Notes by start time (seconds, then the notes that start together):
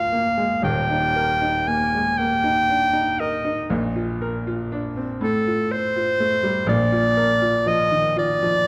Already playing: D2 F4 A#4 F5
0.12 A#3
0.38 G#3
0.62 D#1 D#2 G5
0.90 D#4
1.16 A#4
1.41 D#4
1.68 A#3 G#5
1.95 G#3
2.18 A#3 G5
2.44 D#4
2.69 D4
2.93 D#4
3.20 A#4 D#5
3.45 D#4
3.70 A#1 A#2
3.96 F4
4.22 A#4
4.47 F4
4.72 D4
4.97 C4
5.21 A2 A4
5.47 F4
5.71 C5
5.96 F4
6.20 A3
6.43 G3
6.66 A#1 A#2 D5
6.92 F4
7.17 A#4
7.42 F4
7.66 F3 D#5
7.91 D#3
8.17 F4 D5
8.43 F3